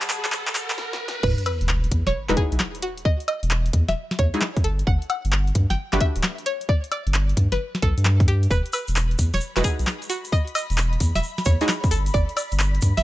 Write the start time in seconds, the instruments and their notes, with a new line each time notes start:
Already playing: string section G3 B4 F#5 A5, synth stab D4, ambient pad B5, riser
0.02 clap, closed hi-hat, shaker
0.09 clap, open hi-hat, shaker
0.25 clap, closed hi-hat, shaker
0.32 clap, shaker
0.47 clap, closed hi-hat, shaker
0.55 clap, open hi-hat, shaker
0.70 clap, closed hi-hat, shaker
0.78 snare
0.93 snare
1.08 snare
1.23 sub bass E1, synth pluck B4, kick, crash, sub drop
1.38 closed hi-hat
1.46 synth pluck B4, open hi-hat, high woodblock
1.61 sub bass E1, closed hi-hat
1.69 clap
1.84 closed hi-hat
1.91 sub bass E2, kick, open hi-hat
2.07 sub bass E1, synth pluck C#5, snare, closed hi-hat
2.29 sub bass E1, synth stab G#3 D#4 E4 F#4 B4, clap, snare, closed hi-hat
2.37 synth pluck G#4, kick, open hi-hat
2.52 sub bass B1, closed hi-hat
2.60 clap, snare
2.75 closed hi-hat
2.82 synth pluck F#4, open hi-hat
2.98 closed hi-hat
3.05 synth pluck D#5, kick
3.20 closed hi-hat
3.28 synth pluck D#5, open hi-hat, high woodblock
3.43 sub bass E1, closed hi-hat
3.51 clap
3.66 closed hi-hat
3.73 sub bass E2, kick, open hi-hat
3.88 sub bass E1, synth pluck E5, snare, closed hi-hat
4.11 snare, closed hi-hat
4.19 sub bass E2, synth pluck C#5, kick, open hi-hat
4.34 synth stab G#3 D#4 E4 F#4 G#4, closed hi-hat
4.42 clap, snare
4.57 kick, closed hi-hat
4.64 sub bass G1, synth pluck A4, open hi-hat
4.79 closed hi-hat
4.87 sub bass G1, synth pluck F#5, kick
5.02 closed hi-hat
5.10 synth pluck F#5, open hi-hat, high woodblock
5.25 sub bass G1, closed hi-hat
5.32 clap
5.47 closed hi-hat
5.55 sub bass G2, kick, open hi-hat
5.70 sub bass G1, synth pluck G5, snare, closed hi-hat
5.93 sub bass G1, synth stab A3 D4 F#4 G4 B4, clap, snare, closed hi-hat
6.01 synth pluck E5, kick, open hi-hat
6.16 sub bass D1, closed hi-hat
6.23 clap, snare
6.38 closed hi-hat
6.46 synth pluck C#5, open hi-hat
6.61 closed hi-hat
6.69 synth pluck D5, kick
6.84 closed hi-hat
6.92 synth pluck D5, open hi-hat, high woodblock
7.07 sub bass G1, closed hi-hat
7.14 clap
7.29 closed hi-hat
7.37 sub bass G2, kick, open hi-hat
7.52 sub bass G1, synth pluck B4, snare, closed hi-hat
7.75 snare, closed hi-hat
7.82 sub bass B1, synth pluck A4, kick, open hi-hat
7.97 sub bass G2, closed hi-hat
8.05 clap, snare
8.20 kick, closed hi-hat
8.28 synth pluck G4, open hi-hat
8.43 closed hi-hat
8.50 sub bass E1, synth pluck B4, ambient pad B5, kick, shaker
8.66 closed hi-hat
8.73 synth pluck B4, open hi-hat, high woodblock, shaker
8.88 sub bass E1, closed hi-hat, shaker
8.96 clap, shaker
9.11 closed hi-hat
9.19 sub bass E2, kick, open hi-hat, shaker
9.33 sub bass E1, synth pluck C#5, snare, closed hi-hat, shaker
9.40 shaker
9.57 sub bass E1, synth stab G#3 D#4 E4 F#4 B4, clap, snare, closed hi-hat, shaker
9.64 synth pluck G#4, kick, open hi-hat, shaker
9.79 sub bass B1, closed hi-hat, shaker
9.87 clap, snare, shaker
10.02 closed hi-hat, shaker
10.10 synth pluck F#4, open hi-hat, shaker
10.25 closed hi-hat, shaker
10.32 synth pluck D#5, kick, shaker
10.47 closed hi-hat
10.55 synth pluck D#5, open hi-hat, high woodblock, shaker
10.70 sub bass E1, closed hi-hat, shaker
10.78 clap, shaker
10.93 closed hi-hat
11.00 sub bass E2, kick, open hi-hat, shaker
11.15 sub bass E1, synth pluck E5, snare, closed hi-hat, shaker
11.23 shaker
11.38 snare, closed hi-hat, shaker
11.45 sub bass E2, synth pluck C#5, kick, open hi-hat, shaker
11.61 synth stab G#3 D#4 E4 F#4 G#4, closed hi-hat, shaker
11.69 clap, snare, shaker
11.84 kick, closed hi-hat, shaker
11.91 sub bass G1, synth pluck A4, open hi-hat, shaker
12.06 closed hi-hat, shaker
12.14 sub bass G1, synth pluck D5, kick, shaker
12.29 closed hi-hat
12.36 synth pluck D5, open hi-hat, high woodblock, shaker
12.52 sub bass G1, closed hi-hat, shaker
12.60 clap, shaker
12.75 closed hi-hat
12.82 sub bass G2, kick, open hi-hat, shaker
12.97 sub bass G1, synth pluck E5, snare, closed hi-hat, shaker